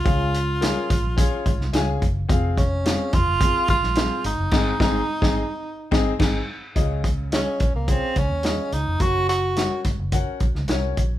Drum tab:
CC |----------------|----------------|x-----------x---|----------------|
HH |x-x-x-x-x-x-x-x-|x-x-x-x-x-x-x-x-|----------------|x-x-x-x-x-x-x-x-|
SD |----o------oo---|----o------oo---|o-o--o----o-o---|----o-------o---|
BD |o-----o-o-o---o-|o-o---o-o-o-----|o-o--o----o-o---|o-o---o-o-o-----|

CC |----------------|
HH |x-x-x-x-x-x-x-x-|
SD |----o-o----oo---|
BD |o-----o-o-o---o-|